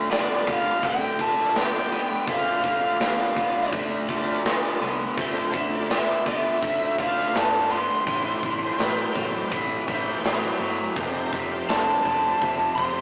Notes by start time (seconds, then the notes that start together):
Already playing: F4 A4 D5 F5
0.10 D2 D3 B3 D5, snare, open hi-hat
0.47 D2 D3 B3 F5, kick
0.82 D2 D3 A3 G5, kick, open hi-hat
1.18 D2 D3 A3 F4 A4 D5 E5 A5, kick
1.38 snare
1.55 D2 D3 B3 G5, snare, open hi-hat
1.75 snare
1.92 D3 B3
2.26 D2 D3 A3 F4 A4 C5 D5 F5, kick, open hi-hat
2.64 D2 D3 A3, kick
2.80 F4 A4 D5
3.00 D2 D3 B3, snare, open hi-hat
3.36 D2 D3 B3, kick
3.72 D2 D3 A3, kick, open hi-hat
4.07 D2 D3 A3 F4 A4 D5, kick
4.45 D2 D3 B3, snare, open hi-hat
4.81 C2 D3 B3
5.16 D2 D3 A3 F4 A4 C5 G5, kick, open hi-hat
5.53 D2 D3 A3, kick
5.71 F4 A4 D5 G5
5.90 D2 D3 B3 E5, snare, open hi-hat
6.26 D2 D3 B3 E5, kick
6.62 D2 D3 A3, kick, open hi-hat
6.98 D2 D3 A3 F4 A4 D5 F5, kick
7.18 snare
7.34 G1 D3 B3 A5, snare, open hi-hat
7.54 snare
7.70 D3 B3 C6
8.07 A1 A2 E3 G4 A4 C5 E5, kick, open hi-hat
8.43 A1 A2 E3, kick
8.62 A4 C5 G5
8.79 A1 A2 F#3, snare, open hi-hat
9.14 A1 A2 F#3, kick
9.50 A1 A2 E3, kick, open hi-hat
9.87 A1 A2 E3 A4 C5 G5, kick
10.08 snare
10.23 A1 A2 F#3, snare, open hi-hat
10.43 snare
10.60 G1 A2 F#3
10.96 F1 F2 C3 G4 A4 C5 D#5, kick, open hi-hat
11.33 F1 F2 C3, kick
11.50 G4 A4 C5 F5
11.69 F1 F2 D3 A5, snare, open hi-hat
12.04 F1 F2 D3 A5, kick
12.41 F1 F2 C3, kick, open hi-hat
12.75 F1 F2 C3 G4 A4 C5 D#5 C6, kick